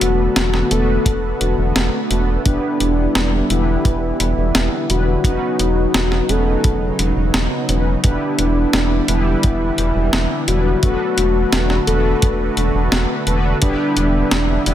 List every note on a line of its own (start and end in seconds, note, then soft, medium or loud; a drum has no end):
0.00 0.28 E1 medium
0.00 5.21 D3 medium
0.00 2.43 A3 medium
0.00 0.67 B3 medium
0.00 13.58 B3 medium
0.00 0.67 D4 medium
0.00 0.67 F#4 medium
0.00 0.73 F#4 loud
0.00 2.43 F#4 medium
0.00 0.67 A4 medium
0.00 0.67 B4 loud
0.00 closed hi-hat medium
0.36 0.63 E1 medium
0.36 snare loud
0.36 closed hi-hat medium
0.54 snare soft
0.71 0.98 E1 medium
0.71 2.06 B3 medium
0.71 2.06 D4 medium
0.71 2.06 F#4 medium
0.71 2.06 A4 medium
0.71 1.41 A4 loud
0.71 2.06 B4 medium
0.71 closed hi-hat medium
1.06 1.33 E1 medium
1.06 kick loud
1.06 closed hi-hat loud
1.41 1.54 E1 medium
1.41 closed hi-hat medium
1.58 1.72 E1 medium
1.76 1.89 E1 loud
1.76 snare loud
1.76 closed hi-hat medium
2.10 2.38 E1 loud
2.10 2.41 B3 medium
2.10 2.41 D4 medium
2.10 2.41 F#4 medium
2.10 2.41 A4 medium
2.10 2.41 B4 medium
2.10 closed hi-hat medium
2.45 2.59 E1 loud
2.45 5.22 G3 medium
2.45 3.46 B3 medium
2.45 3.46 D4 medium
2.45 3.52 D4 loud
2.45 5.22 E4 medium
2.45 3.46 E4 medium
2.45 3.46 G4 medium
2.45 3.46 B4 loud
2.45 kick loud
2.45 closed hi-hat medium
2.80 3.08 E1 medium
2.80 closed hi-hat medium
3.15 3.42 E1 medium
3.15 snare loud
3.15 closed hi-hat medium
3.50 3.77 E1 medium
3.50 4.85 B3 medium
3.50 4.85 D4 medium
3.50 4.85 E4 medium
3.50 4.92 E4 loud
3.50 4.85 G4 medium
3.50 4.85 B4 medium
3.50 closed hi-hat medium
3.85 4.12 E1 medium
3.85 kick loud
3.85 closed hi-hat medium
4.20 4.33 E1 medium
4.20 closed hi-hat medium
4.37 4.51 E1 medium
4.55 4.68 E1 loud
4.55 snare loud
4.55 closed hi-hat medium
4.90 5.17 E1 medium
4.90 5.20 G3 medium
4.90 5.20 B3 medium
4.90 5.20 D4 medium
4.90 5.20 E4 medium
4.90 6.31 F#4 loud
4.90 5.20 B4 medium
4.90 closed hi-hat medium
5.24 5.38 E1 loud
5.24 8.01 C#3 medium
5.24 6.25 B3 medium
5.24 6.25 C#4 medium
5.24 6.25 D#4 medium
5.24 8.01 D#4 medium
5.24 6.25 F#4 medium
5.24 6.25 B4 loud
5.24 kick loud
5.24 closed hi-hat medium
5.59 5.87 E1 medium
5.59 closed hi-hat medium
5.94 6.22 E1 loud
5.94 snare loud
5.94 closed hi-hat medium
6.12 snare soft
6.29 6.56 E1 medium
6.29 7.65 B3 medium
6.29 7.65 C#4 medium
6.29 7.65 D#4 medium
6.29 7.65 F#4 medium
6.29 6.99 A4 loud
6.29 7.65 B4 medium
6.29 closed hi-hat medium
6.64 6.91 E1 medium
6.64 kick loud
6.64 closed hi-hat medium
6.99 7.13 E1 medium
6.99 closed hi-hat medium
7.16 7.30 E1 medium
7.34 7.47 E1 loud
7.34 snare loud
7.34 closed hi-hat medium
7.69 7.96 E1 loud
7.69 7.99 B3 medium
7.69 7.99 C#4 medium
7.69 7.99 D#4 medium
7.69 7.99 F#4 medium
7.69 7.99 B4 medium
7.69 closed hi-hat medium
8.04 8.18 E1 loud
8.04 14.74 D3 medium
8.04 10.80 G3 medium
8.04 9.04 B3 medium
8.04 9.09 D4 loud
8.04 9.04 D4 medium
8.04 10.80 E4 medium
8.04 9.04 E4 medium
8.04 9.04 G4 medium
8.04 9.04 B4 loud
8.04 kick loud
8.04 closed hi-hat medium
8.39 8.66 E1 medium
8.39 closed hi-hat medium
8.73 9.01 E1 loud
8.73 snare loud
8.73 closed hi-hat medium
9.08 9.36 E1 medium
9.08 10.44 B3 medium
9.08 10.44 D4 medium
9.08 10.49 E4 loud
9.08 10.44 E4 medium
9.08 10.44 G4 medium
9.08 10.44 B4 medium
9.08 closed hi-hat medium
9.43 9.71 E1 medium
9.43 kick loud
9.43 closed hi-hat medium
9.78 9.92 E1 medium
9.78 closed hi-hat medium
9.95 10.09 E1 medium
10.13 10.26 E1 loud
10.13 snare loud
10.13 closed hi-hat medium
10.47 10.75 E1 medium
10.47 10.79 G3 medium
10.47 10.79 B3 medium
10.47 10.79 D4 medium
10.47 10.79 E4 medium
10.47 11.86 F#4 loud
10.47 10.79 B4 medium
10.47 closed hi-hat medium
10.83 10.96 E1 loud
10.83 13.59 A3 medium
10.83 11.83 B3 medium
10.83 11.83 D4 medium
10.83 13.59 F#4 medium
10.83 11.83 F#4 medium
10.83 11.83 A4 medium
10.83 11.83 B4 loud
10.83 kick loud
10.83 closed hi-hat medium
11.17 11.45 E1 medium
11.17 closed hi-hat medium
11.52 11.80 E1 loud
11.52 snare loud
11.52 closed hi-hat medium
11.70 snare soft
11.87 12.14 E1 medium
11.87 13.23 B3 medium
11.87 13.23 D4 medium
11.87 13.23 F#4 medium
11.87 12.53 A4 loud
11.87 13.23 A4 medium
11.87 13.23 B4 loud
11.87 closed hi-hat medium
12.22 12.50 E1 medium
12.22 kick loud
12.22 closed hi-hat medium
12.57 12.71 E1 medium
12.57 closed hi-hat medium
12.74 12.88 E1 medium
12.92 13.06 E1 loud
12.92 snare loud
12.92 closed hi-hat medium
13.27 13.54 E1 medium
13.27 13.58 B3 medium
13.27 13.58 D4 medium
13.27 13.58 F#4 medium
13.27 13.58 A4 medium
13.27 13.58 B4 medium
13.27 closed hi-hat medium
13.62 13.76 E1 loud
13.62 14.74 G3 medium
13.62 14.62 B3 medium
13.62 14.74 B3 medium
13.62 14.62 D4 medium
13.62 14.68 D4 loud
13.62 14.62 E4 medium
13.62 14.74 E4 medium
13.62 14.62 G4 medium
13.62 14.62 B4 loud
13.62 kick loud
13.62 closed hi-hat medium
13.97 14.24 E1 medium
13.97 closed hi-hat medium
14.31 14.59 E1 medium
14.31 snare loud
14.31 closed hi-hat medium
14.66 14.74 E1 medium
14.66 14.74 G3 medium
14.66 14.74 B3 medium
14.66 14.74 D4 medium
14.66 14.74 E4 medium
14.66 14.74 E4 loud
14.66 14.74 B4 loud
14.66 closed hi-hat medium